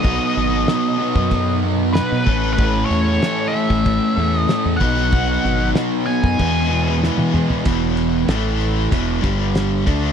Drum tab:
CC |x---x---x---x---|x---x---x---x---|x---x---x-------|----------------|
RD |----------------|----------------|----------------|x-x-x-x-x-x-x-x-|
SD |----o-------o---|--o-o-------o--o|--o-o-------o---|----o-------o---|
T1 |----------------|----------------|-------------o--|----------------|
T2 |----------------|----------------|--------------o-|----------------|
FT |----------------|----------------|---------------o|----------------|
BD |o------oo-----o-|o------oo-----o-|o------oo-------|o-------o-o---o-|